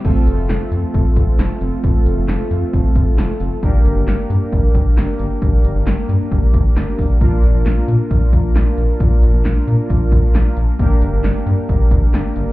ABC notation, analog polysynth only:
X:1
M:4/4
L:1/8
Q:1/4=134
K:F
V:1 name="Analog polysynth"
[A,CFA]8- | [A,CFA]8 | [B,DGB]8- | [B,DGB]8 |
[B,DFB]8- | [B,DFB]8 | [B,DGB]8 |]